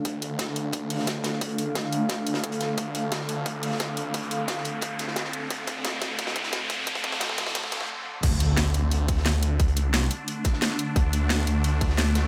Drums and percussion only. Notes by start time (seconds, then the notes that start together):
0.05 kick, closed hi-hat
0.22 closed hi-hat
0.39 kick, snare, closed hi-hat
0.48 snare
0.56 closed hi-hat
0.72 kick, closed hi-hat
0.90 closed hi-hat, open hi-hat
1.00 snare
1.07 kick, snare, closed hi-hat
1.24 snare, closed hi-hat
1.33 snare
1.41 kick, closed hi-hat
1.49 closed hi-hat
1.58 closed hi-hat
1.75 kick, snare, closed hi-hat
1.84 snare
1.92 closed hi-hat
2.09 kick, snare, closed hi-hat
2.27 closed hi-hat
2.34 snare, closed hi-hat
2.44 kick, closed hi-hat
2.52 closed hi-hat
2.60 snare, closed hi-hat
2.77 kick, closed hi-hat
2.95 closed hi-hat
3.12 kick, snare, closed hi-hat
3.21 snare
3.29 closed hi-hat
3.46 kick, closed hi-hat
3.63 closed hi-hat, open hi-hat
3.72 snare
3.80 kick, snare, closed hi-hat
3.97 closed hi-hat
4.14 kick, closed hi-hat
4.22 closed hi-hat
4.31 closed hi-hat
4.48 kick, snare, closed hi-hat
4.57 snare
4.65 closed hi-hat
4.81 kick, closed hi-hat
4.99 snare, closed hi-hat
5.08 snare
5.16 kick, snare, closed hi-hat
5.24 snare
5.33 closed hi-hat
5.50 kick, closed hi-hat
5.67 kick, closed hi-hat
5.85 kick, snare, closed hi-hat
5.93 snare
6.02 kick, snare, closed hi-hat
6.19 kick, snare, closed hi-hat
6.27 snare, closed hi-hat
6.36 kick, snare, closed hi-hat
6.44 snare, closed hi-hat
6.52 kick, snare, closed hi-hat
6.70 kick, closed hi-hat
6.87 kick, closed hi-hat
6.95 kick, closed hi-hat
7.04 kick, closed hi-hat
7.12 kick, closed hi-hat
7.20 kick, snare, closed hi-hat
7.29 kick, snare
7.38 kick, snare, closed hi-hat
7.46 kick, snare, closed hi-hat
7.55 kick, snare, closed hi-hat
7.64 kick
7.72 kick, snare, closed hi-hat
7.81 kick, snare
8.23 kick, closed hi-hat, crash
8.40 closed hi-hat
8.57 snare, closed hi-hat
8.66 snare
8.74 closed hi-hat
8.91 closed hi-hat
9.08 kick, closed hi-hat, open hi-hat
9.17 snare
9.25 snare, closed hi-hat
9.42 closed hi-hat
9.59 kick, closed hi-hat
9.68 closed hi-hat
9.76 closed hi-hat
9.94 snare, closed hi-hat
10.02 snare
10.11 closed hi-hat
10.28 closed hi-hat
10.44 kick, snare, closed hi-hat
10.53 snare
10.62 snare, closed hi-hat
10.70 snare
10.79 closed hi-hat
10.96 kick, closed hi-hat
11.13 closed hi-hat
11.30 snare, closed hi-hat
11.38 snare
11.47 closed hi-hat
11.64 closed hi-hat
11.81 kick, closed hi-hat, open hi-hat
11.89 snare
11.98 snare, closed hi-hat
12.15 snare, closed hi-hat
12.24 snare